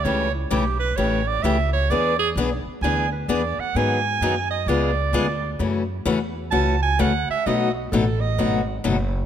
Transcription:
X:1
M:4/4
L:1/8
Q:"Swing" 1/4=130
K:Emix
V:1 name="Clarinet"
c E =G B c d e c | d G z2 g B d f | g3 ^d =d4 | z4 a g f e |
^d F A d2 z3 |]
V:2 name="Steel-string acoustic guitar"
[C,E,A,C=G] z [C,E,A,CG] z [C,E,A,CG] z [C,E,A,CG] z | [E,B,DG] z [E,B,DG] z [E,B,DG] z [E,B,DG] z | [^D,F,B,^DG] z [D,F,B,DG] z [C,G,B,^EG] z [C,G,B,EG] z | [C,E,A,CF] z [C,E,A,CF] z [C,E,A,CF] z [C,E,A,CF] z |
[B,,F,A,^DF] z [B,,F,A,DF] z [B,,F,A,DF] z [B,,F,A,DF] z |]
V:3 name="Upright bass" clef=bass
C,,2 B,,,2 A,,,2 C,,2 | E,,2 B,,, z D,,2 E,, z | G,,2 F,,2 C,,2 D,,2 | F,,2 E,,2 C,,2 D,, z |
B,,,2 A,,,2 G,,,2 F,,,2 |]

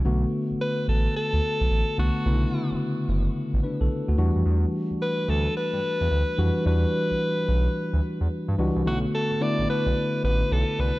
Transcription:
X:1
M:4/4
L:1/16
Q:"Swing 16ths" 1/4=109
K:Bphr
V:1 name="Alto saxophone"
z4 B2 A2 A6 F2- | F4 z12 | z4 B2 A2 B8 | B12 z4 |
F2 A2 d2 B4 B2 A2 B2 |]
V:2 name="Tine electric piano"
z16 | z8 z2 [DB] A2 [A,F]2 z | z16 | z16 |
z16 |]
V:3 name="Tine electric piano"
[D,A,B,F]8 z6 [D,A,B,F]2 | [^C,D,A,B,E]8 z6 [E,G,DF]2- | [E,G,DF]6 z8 [E,G,DF]2 | [E,G,DF]8 z6 [E,G,DF]2 |
[D,A,B,EF]4 [D,A,B,E]8 z4 |]
V:4 name="Analog synth bass" clef=bass
B,,,2 z A,,, z2 A,,,2 z D,, z B,,, A,,, z C,, z | B,,,2 z F,,, z2 F,,,2 z A,,, z B,,, z D,, E,, =F,, | E,,2 z D,, z2 D,,2 z G,, z E,, D,, z =F,, z | E,,2 z B,,, z2 B,,,2 z D,, z E,, z G,, ^C,, =C,, |
B,,,2 z A,,, z A,,, z B,,, z2 A,,,2 B,,, z C,, z |]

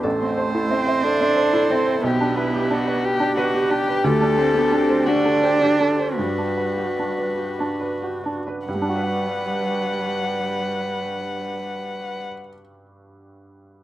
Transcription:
X:1
M:6/8
L:1/16
Q:3/8=52
K:G
V:1 name="Harp"
[EA] c a A e e A e c A e c | z B b2 d d2 d B2 d B | D2 c D A A D A G D A G | G B f G d d G d B G d B- |
B12- | B12 |]
V:2 name="Viola"
c12 | G12- | G12 | F8- F2 z2 |
B12- | B12 |]
V:3 name="Violin"
z6 A6 | G2 E2 F2 G2 F2 G2 | A6 F2 G2 A2 | B8- B z3 |
f12- | f12 |]
V:4 name="Felt piano"
A,,, C c E C c2 C c E C c | B,,, D B G D B2 D B G D B | D,, D c G D c2 D c G D c | G,, D B F D B2 D B F D B |
[G,,G,DFBf]12- | [G,,G,DFBf]12 |]
V:5 name="Cello"
A,4 C2 D4 C2 | B,8- B,2 z2 | A,2 C B, C2 D6 | G,6 z6 |
G,12- | G,12 |]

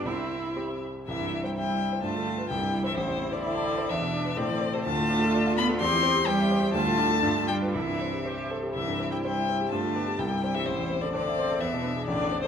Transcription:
X:1
M:2/4
L:1/16
Q:1/4=127
K:C
V:1 name="Violin"
e6 z2 | e3 g g4 | a4 g3 e | c3 d d4 |
e4 d3 c | a6 b2 | c'4 g4 | a6 g2 |
e6 z2 | e3 g g4 | a4 g3 e | c3 d d4 |
e4 d3 c |]
V:2 name="Grand piano"
C,,4 [CEG]4 | C,, G,, E c e g e c | G,, D, F B C,, G,, E c | A,,, E,, E c e a e c |
E,, B,, D B A,, E, C A | D,, A,, D A d f d A | E,, E, C G c e c G | D,, A,, D A G,, D, D B |
C,, G,, C G c e c G | C,, G,, C G c e c G | G,, D, B, G C,, G,, C G | A,,, E,, C A c e c A |
E,, B,, D ^G A,,, E,, C A |]
V:3 name="Viola"
E6 z2 | E4 E4 | F4 E4 | E8 |
D4 C4 | F8 | G4 G4 | F4 F4 |
E4 G2 A2 | E8 | F2 D2 E4 | E4 D2 C2 |
B,2 B,2 D4 |]
V:4 name="Cello" clef=bass
C4 z4 | E,3 G, G,4 | A,4 G,3 E, | C,3 D, D,4 |
E,4 D,3 C, | A,6 B,2 | C4 G,4 | A,6 G,2 |
E,6 z2 | E,3 G, G,4 | A,4 G,3 E, | C,3 D, D,4 |
E,4 D,3 C, |]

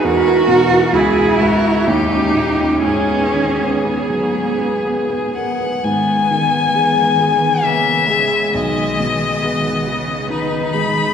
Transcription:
X:1
M:3/4
L:1/16
Q:1/4=66
K:G#m
V:1 name="Violin"
B2 A2 G2 A2 =G4 | G8- G2 f2 | g8 e4 | d8 B2 b2 |]
V:2 name="Viola"
A4 G2 F2 =G4 | G12 | B,2 B,6 A,2 G,2 | G,4 B,4 D4 |]
V:3 name="Grand piano" clef=bass
E,, E B,, E C,, E G,, E D,, C A,, C | G,, B, D, B, G, F, G, B B, B A B | G,,2 D,2 G,2 G2 B,2 G,2 | B,,,2 B,,2 G,2 G2 D2 G,2 |]
V:4 name="Cello" clef=bass
F4 E4 D4 | C4 B,6 z2 | D,4 E,2 D,2 C,4 | D,4 D,2 C,2 D,4 |]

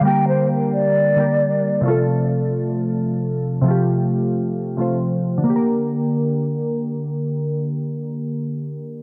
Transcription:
X:1
M:4/4
L:1/8
Q:1/4=133
K:Gm
V:1 name="Flute"
g c z d4- d | z8 | z8 | z8 |
z8 |]
V:2 name="Synth keys"
[D,G,B,GB]4- [D,G,B,GB] [D,G,B,GB]3 | [C,F,A,FA]8 | [C,F,A,FG]4- [C,F,A,FG] [C,F,A,Fc]3 | [D,B,GB]8- |
[D,B,GB]8 |]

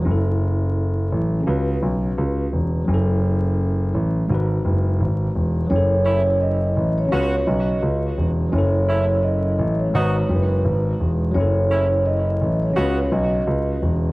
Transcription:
X:1
M:4/4
L:1/16
Q:"Swing 16ths" 1/4=85
K:F#dor
V:1 name="Vibraphone"
z16 | z16 | c4 d3 c3 d3 z3 | c4 d3 c3 B3 z3 |
c4 d3 c3 d3 z3 |]
V:2 name="Tine electric piano"
[F,CEA]8 [C,CFB]8 | [F,CEA]8 [G,DFB]8 | [F,CEA]8 [C,CFB]8 | [F,CEA]8 [G,DFB]8 |
[F,CEA]8 [C,CFB]8 |]
V:3 name="Horn section"
z16 | z16 | z2 [A,CE] z4 z [B,CF]2 z6 | z2 [A,CE] z4 z [B,DF]2 z6 |
z2 [A,CE] z4 z [B,CF]2 z6 |]
V:4 name="Grand piano" clef=bass
F,,,6 A,,,2 C,,2 B,,,2 C,,2 E,,,2 | F,,,6 A,,,2 G,,,2 F,,,2 G,,,2 E,,,2 | F,,,6 A,,,2 C,,2 B,,,2 C,,2 E,,,2 | F,,,6 A,,,2 G,,,2 F,,,2 G,,,2 E,,,2 |
F,,,6 A,,,2 C,,2 B,,,2 C,,2 E,,,2 |]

